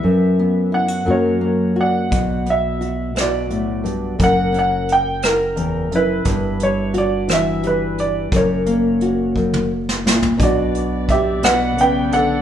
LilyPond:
<<
  \new Staff \with { instrumentName = "Upright piano" } { \time 6/8 \key b \minor \tempo 4. = 58 << { e''8 r8 fis''8 cis''4 fis''8~ | fis''8 e''4 d''4. | fis''8 fis''8 g''8 ais'4 b'8~ | b'8 cis''8 d''8 e''8 b'8 d''8 |
cis''2 r4 | d''4 e''8 fis''8 g''8 fis''8 | } \\ { b'4 r8 ais'4 d''8~ | d''4 r8 fis'4. | ais'4. r4 e'8~ | e'4 r2 |
ais'2 r4 | fis'4 g'8 b'8 b'8 a'8 | } >> }
  \new Staff \with { instrumentName = "String section" } { \time 6/8 \key b \minor r2. | r2. | r2. | r2. |
r2. | <b d''>2. | }
  \new Staff \with { instrumentName = "Nylon-string guitar" } { \clef bass \time 6/8 \key b \minor << { r8 b8 e'16 fis'16 <fis ais fis'>8 ais8 fis'8 | r8 b8 fis'2 | r8 cis'2~ cis'8 | r8 g8 fis'4 g4 |
r8 ais8 fis'2 | d'4 r2 | } \\ { fis,4. fis,4. | b,4. b,8 a,8 g,8 | fis,2 e,8 fis,8 | g,4. e4. |
fis,4. fis,8 r8 ais,8 | b,4. b,8 cis8 d8 | } >> }
  \new Staff \with { instrumentName = "Fingered electric bass" } { \clef bass \time 6/8 \key b \minor fis,4. fis,4. | b,,2. | fis,,2. | g,,2. |
fis,,2. | b,,2. | }
  \new DrumStaff \with { instrumentName = "Drums" } \drummode { \time 6/8 r4. r4. | <hh bd>8 hh8 hh8 <hh ss>8 hh8 hh8 | <hh bd>8 hh8 hh8 <hh ss>8 hh8 hh8 | <hh bd>8 hh8 hh8 <hh ss>8 hh8 hh8 |
<hh bd>8 hh8 hh8 bd16 tommh8 sn16 sn16 tomfh16 | <hh bd>8 hh8 <hh bd>8 <hh ss>8 hh8 hh8 | }
>>